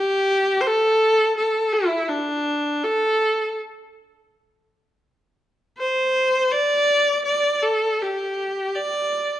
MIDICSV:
0, 0, Header, 1, 2, 480
1, 0, Start_track
1, 0, Tempo, 500000
1, 9022, End_track
2, 0, Start_track
2, 0, Title_t, "Viola"
2, 0, Program_c, 0, 41
2, 0, Note_on_c, 0, 67, 105
2, 583, Note_on_c, 0, 72, 76
2, 598, Note_off_c, 0, 67, 0
2, 644, Note_on_c, 0, 69, 99
2, 659, Note_off_c, 0, 72, 0
2, 1314, Note_off_c, 0, 69, 0
2, 1319, Note_on_c, 0, 69, 83
2, 1658, Note_on_c, 0, 64, 91
2, 1673, Note_off_c, 0, 69, 0
2, 2007, Note_on_c, 0, 62, 87
2, 2021, Note_off_c, 0, 64, 0
2, 2720, Note_on_c, 0, 69, 92
2, 2735, Note_off_c, 0, 62, 0
2, 3417, Note_off_c, 0, 69, 0
2, 5552, Note_on_c, 0, 72, 89
2, 6259, Note_on_c, 0, 74, 102
2, 6274, Note_off_c, 0, 72, 0
2, 6957, Note_off_c, 0, 74, 0
2, 6963, Note_on_c, 0, 74, 90
2, 7321, Note_on_c, 0, 69, 92
2, 7336, Note_off_c, 0, 74, 0
2, 7697, Note_on_c, 0, 67, 82
2, 7711, Note_off_c, 0, 69, 0
2, 8406, Note_on_c, 0, 74, 86
2, 8420, Note_off_c, 0, 67, 0
2, 9022, Note_off_c, 0, 74, 0
2, 9022, End_track
0, 0, End_of_file